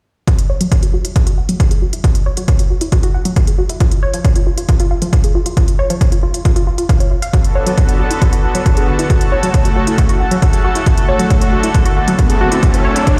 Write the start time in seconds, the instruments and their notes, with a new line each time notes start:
0.27 synth arpeggio sound F#4, kick, closed hi-hat
0.39 closed hi-hat
0.50 synth arpeggio sound C#5
0.61 synth arpeggio sound F#3, closed hi-hat
0.72 synth arpeggio sound C#5, kick, closed hi-hat
0.83 synth arpeggio sound F#4, closed hi-hat
0.94 synth arpeggio sound F#4
1.05 synth arpeggio sound E4, closed hi-hat
1.16 synth arpeggio sound F#4, kick, closed hi-hat
1.27 synth arpeggio sound F#4, closed hi-hat
1.38 synth arpeggio sound F#5
1.49 synth arpeggio sound F#3, closed hi-hat
1.60 synth arpeggio sound F#4, kick, closed hi-hat
1.71 synth arpeggio sound G#4, closed hi-hat
1.82 synth arpeggio sound F#4
1.93 synth arpeggio sound E4, closed hi-hat
2.04 synth arpeggio sound F#4, kick, closed hi-hat
2.15 closed hi-hat
2.26 synth arpeggio sound C#5
2.37 synth arpeggio sound F#3, closed hi-hat
2.48 synth arpeggio sound C#5, kick, closed hi-hat
2.59 synth arpeggio sound F#4, closed hi-hat
2.70 synth arpeggio sound F#4
2.81 synth arpeggio sound E4, closed hi-hat
2.92 synth arpeggio sound F#4, kick, closed hi-hat
3.03 synth arpeggio sound F#4, closed hi-hat
3.14 synth arpeggio sound F#5
3.25 synth arpeggio sound F#3, closed hi-hat
3.36 synth arpeggio sound F#4, kick, closed hi-hat
3.47 synth arpeggio sound G#4, closed hi-hat
3.59 synth arpeggio sound F#4
3.69 synth arpeggio sound E4, closed hi-hat
3.80 synth arpeggio sound F4, kick, closed hi-hat
3.91 closed hi-hat
4.03 synth arpeggio sound C#5
4.14 synth arpeggio sound F3, closed hi-hat
4.25 synth arpeggio sound C#5, kick, closed hi-hat
4.36 synth arpeggio sound F4, closed hi-hat
4.47 synth arpeggio sound F4
4.58 synth arpeggio sound F4, closed hi-hat
4.69 synth arpeggio sound F4, kick, closed hi-hat
4.80 synth arpeggio sound F4, closed hi-hat
4.91 synth arpeggio sound F5
5.02 synth arpeggio sound F3, closed hi-hat
5.13 synth arpeggio sound F4, kick, closed hi-hat
5.24 synth arpeggio sound G#4, closed hi-hat
5.35 synth arpeggio sound F4
5.46 synth arpeggio sound F4, closed hi-hat
5.57 synth arpeggio sound F4, kick, closed hi-hat
5.68 closed hi-hat
5.79 synth arpeggio sound C#5
5.90 synth arpeggio sound F3, closed hi-hat
6.01 synth arpeggio sound C#5, kick, closed hi-hat
6.12 synth arpeggio sound F4, closed hi-hat
6.23 synth arpeggio sound F4
6.34 synth arpeggio sound F4, closed hi-hat
6.45 synth arpeggio sound F4, kick, closed hi-hat
6.56 synth arpeggio sound F4, closed hi-hat
6.67 synth arpeggio sound F4
6.78 synth arpeggio sound F4, closed hi-hat
6.89 synth arpeggio sound F5, kick, closed hi-hat
7.00 synth arpeggio sound C#5, closed hi-hat
7.11 synth arpeggio sound F4
7.22 synth arpeggio sound F5, closed hi-hat
7.33 analog synth pad D3 B3 F#4 A4, synth arpeggio sound F#4, kick, closed hi-hat
7.44 analog synth pad D3 B3 F#4 A4, closed hi-hat
7.55 analog synth pad D3 B3 F#4 A4, synth arpeggio sound C#5
7.67 synth arpeggio sound F#3, closed hi-hat
7.77 analog synth pad D3 B3 F#4 A4, synth arpeggio sound C#5, kick, closed hi-hat
7.89 synth arpeggio sound F#4, closed hi-hat
8.00 analog synth pad D3 B3 F#4 A4, synth arpeggio sound F#4
8.11 analog synth pad D3 B3 F#4 A4, synth arpeggio sound E4, closed hi-hat
8.22 synth arpeggio sound F#4, kick, closed hi-hat
8.33 synth arpeggio sound F#4, closed hi-hat
8.44 analog synth pad D3 B3 F#4 A4, synth arpeggio sound F#5
8.55 synth arpeggio sound F#3, closed hi-hat
8.66 analog synth pad D3 B3 F#4 A4, synth arpeggio sound F#4, kick, closed hi-hat
8.77 synth arpeggio sound G#4, closed hi-hat
8.88 analog synth pad D3 B3 F#4 A4, synth arpeggio sound F#4
8.99 analog synth pad D3 B3 F#4 A4, synth arpeggio sound E4, closed hi-hat
9.10 analog synth pad C#3 A3 F#4 A4, synth arpeggio sound F#4, kick, closed hi-hat
9.21 analog synth pad C#3 A3 F#4 A4, closed hi-hat
9.32 analog synth pad C#3 A3 F#4 A4, synth arpeggio sound C#5
9.43 synth arpeggio sound F#3, closed hi-hat
9.54 analog synth pad C#3 A3 F#4 A4, synth arpeggio sound C#5, kick, closed hi-hat
9.65 synth arpeggio sound F#4, closed hi-hat
9.76 analog synth pad C#3 A3 F#4 A4, synth arpeggio sound F#4
9.87 analog synth pad C#3 A3 F#4 A4, synth arpeggio sound E4, closed hi-hat
9.98 synth arpeggio sound F#4, kick, closed hi-hat
10.09 synth arpeggio sound F#4, closed hi-hat
10.20 analog synth pad C#3 A3 F#4 A4, synth arpeggio sound F#5
10.31 synth arpeggio sound F#3, closed hi-hat
10.42 analog synth pad C#3 A3 F#4 A4, synth arpeggio sound F#4, kick, closed hi-hat
10.53 synth arpeggio sound G#4, closed hi-hat
10.64 analog synth pad C#3 A3 F#4 A4, synth arpeggio sound F#4
10.75 analog synth pad C#3 A3 F#4 A4, synth arpeggio sound E4, closed hi-hat
10.86 analog synth pad D3 A3 F#4 A4, synth arpeggio sound F#4, kick, closed hi-hat, riser
10.97 analog synth pad D3 A3 F#4 A4, closed hi-hat
11.09 analog synth pad D3 A3 F#4 A4, synth arpeggio sound C#5
11.19 synth arpeggio sound F#3, closed hi-hat
11.30 analog synth pad D3 A3 F#4 A4, synth arpeggio sound C#5, kick, closed hi-hat
11.41 synth arpeggio sound F#4, closed hi-hat
11.53 analog synth pad D3 A3 F#4 A4, synth arpeggio sound F#4
11.63 analog synth pad D3 A3 F#4 A4, synth arpeggio sound E4, closed hi-hat
11.74 synth arpeggio sound F#4, kick, closed hi-hat
11.85 synth arpeggio sound F#4, closed hi-hat
11.97 analog synth pad D3 A3 F#4 A4, synth arpeggio sound F#5
12.08 synth arpeggio sound F#3, closed hi-hat
12.19 analog synth pad D3 A3 F#4 A4, synth arpeggio sound F#4, kick, closed hi-hat
12.30 synth arpeggio sound G#4, closed hi-hat
12.41 analog synth pad D3 A3 F#4 A4, synth arpeggio sound F#4
12.52 analog synth pad D3 A3 F#4 A4, synth arpeggio sound E4, closed hi-hat
12.63 analog synth pad C#3 A3 E4 A4, synth arpeggio sound F#4, kick, closed hi-hat
12.74 analog synth pad C#3 A3 E4 A4, closed hi-hat
12.85 analog synth pad C#3 A3 E4 A4, synth arpeggio sound C#5
12.96 synth arpeggio sound F#3, closed hi-hat
13.07 analog synth pad C#3 A3 E4 A4, synth arpeggio sound C#5, kick, closed hi-hat